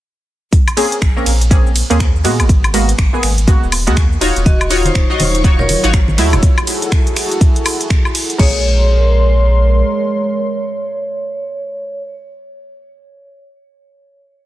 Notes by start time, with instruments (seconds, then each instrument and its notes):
0.53 kick, closed hi-hat, shaker
0.68 closed hi-hat, high woodblock, shaker
0.77 synth stab A#3 C4 C#4 G#4, open hi-hat, ride, shaker
0.92 closed hi-hat, shaker
1.02 sub bass A#1, finger snap, kick, closed hi-hat, shaker
1.16 synth stab A#3 C4 C#4 A#4, shaker
1.26 sub bass A#1, open hi-hat, ride, shaker
1.41 closed hi-hat, shaker
1.51 synth stab A#3 C4 C#4 G#4, kick, closed hi-hat, shaker
1.67 shaker
1.76 open hi-hat, ride, shaker
1.90 sub bass D#2, synth stab A#3 C4 C#4 G#4, closed hi-hat, shaker
2.00 finger snap, kick, closed hi-hat, shaker
2.16 shaker
2.24 sub bass A#2, synth stab G#3 A#3 B3 F#4, open hi-hat, ride, shaker
2.40 sub bass G#1, closed hi-hat, high woodblock, shaker
2.49 kick, closed hi-hat, shaker
2.64 closed hi-hat, high woodblock, shaker
2.73 synth stab G#3 A#3 B3 F#4, open hi-hat, ride, shaker
2.89 closed hi-hat, shaker
2.98 sub bass G#1, finger snap, kick, closed hi-hat, shaker
3.13 synth stab G#3 A#3 B3 G#4, shaker
3.23 sub bass G#1, finger snap, open hi-hat, ride, shaker
3.38 closed hi-hat, shaker
3.47 synth stab G#3 A#3 B3 F#4, kick, closed hi-hat, shaker
3.63 sub bass D#1, shaker
3.72 open hi-hat, ride, high woodblock, shaker
3.87 sub bass D#2, synth stab G#3 A#3 B3 F#4, closed hi-hat, shaker
3.97 finger snap, kick, closed hi-hat, shaker
4.13 shaker
4.21 sub bass D#1, synth stab D#4 F4 F#4 C#5, open hi-hat, ride, shaker
4.36 sub bass D#1, closed hi-hat, shaker
4.46 analog synth pad F#3 D#4 F4 C#5, vibraphone F#4 D#5, violin section C#5 C#6, kick, closed hi-hat, high conga, shaker
4.61 closed hi-hat, high woodblock, shaker
4.70 synth stab D#4 F4 F#4 C#5, open hi-hat, ride, shaker
4.85 vibraphone D#4 C5, closed hi-hat, high conga, shaker
4.95 sub bass D#1, finger snap, kick, closed hi-hat, shaker
5.10 synth stab D#4 F4 F#4 D#5, shaker
5.20 sub bass D#1, vibraphone D#4 C5, open hi-hat, ride, high conga, low conga, shaker
5.35 closed hi-hat, shaker
5.44 synth stab D#4 F4 F#4 C#5, kick, closed hi-hat, shaker
5.59 vibraphone A#4 C#5, low conga, shaker
5.69 open hi-hat, ride, high conga, shaker
5.84 sub bass G#1, synth stab D#4 F4 F#4 C#5, closed hi-hat, shaker
5.94 finger snap, kick, closed hi-hat, shaker
6.08 high conga, shaker
6.18 sub bass D#2, synth stab F#3 G#3 A3 E4, open hi-hat, ride, shaker
6.33 sub bass D#1, closed hi-hat, low conga, high woodblock, shaker
6.43 analog synth pad E4 F#4 G#4 A4, kick, closed hi-hat, shaker
6.58 closed hi-hat, high woodblock, shaker
6.67 open hi-hat, ride, shaker
6.82 closed hi-hat, shaker
6.92 finger snap, kick, closed hi-hat, shaker
7.07 closed hi-hat, shaker
7.16 finger snap, open hi-hat, ride, shaker
7.31 closed hi-hat, shaker
7.41 kick, closed hi-hat, shaker
7.56 closed hi-hat, shaker
7.66 open hi-hat, ride, high woodblock, shaker
7.81 closed hi-hat, shaker
7.90 finger snap, kick, closed hi-hat, shaker
8.05 high woodblock, shaker
8.15 open hi-hat, ride, shaker
8.30 closed hi-hat, shaker
8.38 sub bass A#1, synth stab G#3 A#3 C#4 G#4, analog synth pad G#3 A#4 C6, vibraphone C#5, kick, crash